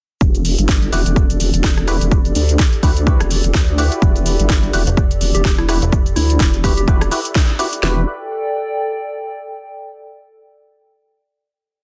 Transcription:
0.21 E1 A4, kick, cabasa
0.34 D5, closed hi-hat, cabasa
0.45 open hi-hat, cabasa
0.58 G1, closed hi-hat, cabasa
0.69 kick, snare, cabasa
0.82 closed hi-hat
0.92 E1 E4 F#4 G4 B4, open hi-hat, cabasa
1.06 E1, closed hi-hat, cabasa
1.16 kick, cabasa
1.30 closed hi-hat, cabasa
1.40 E1 G4, open hi-hat, cabasa
1.54 E1, closed hi-hat, cabasa
1.64 kick, snare, cabasa
1.77 cross-stick, closed hi-hat
1.88 E4 F#4 G4 B4, cross-stick, open hi-hat, cabasa
2.01 E1, closed hi-hat, cabasa
2.12 kick, cabasa
2.25 closed hi-hat, cabasa
2.35 D2, open hi-hat, cabasa
2.49 closed hi-hat, cabasa
2.59 kick, snare, cabasa
2.73 closed hi-hat
2.83 D2 E4 F#4 G4 B4, kick, open hi-hat, cabasa
2.97 closed hi-hat, cabasa
3.07 E4 F#4 G4 B4, kick, cabasa
3.20 E1, cross-stick, closed hi-hat, cabasa
3.31 open hi-hat, cabasa
3.44 E1, closed hi-hat, cabasa
3.54 D2, kick, snare, cabasa
3.68 closed hi-hat
3.78 E4 F#4 G4 B4, open hi-hat, cabasa
3.92 closed hi-hat, cabasa
4.02 E1, kick, cabasa
4.16 closed hi-hat, cabasa
4.26 open hi-hat, cabasa
4.39 G1, closed hi-hat, cabasa
4.50 kick, snare, cabasa
4.63 closed hi-hat
4.73 E1 E4 F#4 G4 B4, open hi-hat, cabasa
4.87 E1, closed hi-hat, cabasa
4.97 kick, cabasa
5.11 closed hi-hat, cabasa
5.21 E1, open hi-hat, cabasa
5.35 E1 G4, closed hi-hat, cabasa
5.45 kick, snare, cabasa
5.58 E4, cross-stick, closed hi-hat
5.69 E4 F#4 G4 B4, cross-stick, open hi-hat, cabasa
5.82 E1, closed hi-hat, cabasa
5.92 kick, cabasa
6.06 closed hi-hat, cabasa
6.16 D2 E4, open hi-hat, cabasa
6.30 closed hi-hat, cabasa
6.40 E1, kick, snare, cabasa
6.54 closed hi-hat
6.64 E4 F#4 G4 B4, kick, open hi-hat, cabasa
6.77 G4, closed hi-hat, cabasa
6.88 E1 E4 F#4 G4 B4, kick, cabasa
7.01 cross-stick, closed hi-hat, cabasa
7.11 E4 F#4 G4 B4, open hi-hat, cabasa
7.25 closed hi-hat, cabasa
7.35 kick, snare, cabasa
7.49 closed hi-hat
7.59 E4 F#4 G4 B4, open hi-hat, cabasa
7.73 closed hi-hat, cabasa
7.83 E1 E4 F#4 G4 A4 B4, snare
7.91 D5
7.99 G5

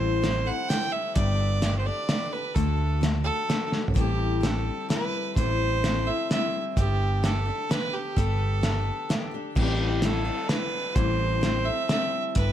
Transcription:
Already playing: A1 A2 E3 G3 C4 E4 A4 C5
0.22 G3 C4 E4 A4, snare, closed hi-hat
0.46 G3 C4 E4 A4 F#5
0.69 G3 C4 E4 A4 G5, snare, closed hi-hat
0.92 E5
1.15 G1 G3 B3 D4 G4 A4 D5, kick, closed hi-hat
1.61 B3 D4 G4 A4, snare, closed hi-hat
1.79 C5
1.85 D4 G4 A4 D5
2.09 B3 D4 G4 A4, snare, closed hi-hat
2.32 D4 G4 A4 B4
2.55 D2 D3 A3 D4 F#4 A4, kick, closed hi-hat
3.01 A3 D4 F#4 A4, snare, closed hi-hat
3.24 D4 F#4 A4
3.49 A3 D4 F#4 A4, snare, closed hi-hat
3.70 D4 F#4 A4, snare
3.88 floor tom
3.94 A1 A2 E3 G3 C4 E4 G4 A4, kick, closed hi-hat
4.41 G3 C4 E4 A4, snare, closed hi-hat
4.89 G3 C4 E4 A4 B4, snare, closed hi-hat
5.36 A1 A2 E3 G3 C4 E4 A4 C5, kick, closed hi-hat
5.83 G3 C4 E4 A4, snare, closed hi-hat
6.06 G3 C4 E4 A4 E5
6.30 G3 C4 E4 A4 E5, snare, closed hi-hat
6.76 G1 G3 B3 D4 G4 A4, kick, closed hi-hat
7.23 B3 D4 G4 A4, snare, closed hi-hat
7.46 D4 G4 A4
7.69 B3 D4 G4 A4 B4, snare, closed hi-hat
7.94 G4
8.16 G1 G3 B3 D4 G4 A4, kick, closed hi-hat
8.61 B3 D4 G4 A4, snare, closed hi-hat
9.09 B3 D4 G4 A4, snare, closed hi-hat
9.31 D4 G4 A4
9.55 A1 A2 E3 G3 C4 E4 G4 A4, kick, crash
10.02 G3 C4 E4 A4, snare, closed hi-hat
10.25 G3 C4 E4 A4
10.48 G3 C4 E4 B4, snare, closed hi-hat
10.52 A4
10.95 A1 A2 E3 G3 C4 E4 A4 C5, kick, closed hi-hat
11.41 G3 C4 E4 A4, snare, closed hi-hat
11.65 C4 E4 A4 E5
11.69 G3
11.89 G3 C4 E4 A4 E5, snare, closed hi-hat
12.35 G1 G3 B3 D4 G4 A4 B4, kick, closed hi-hat

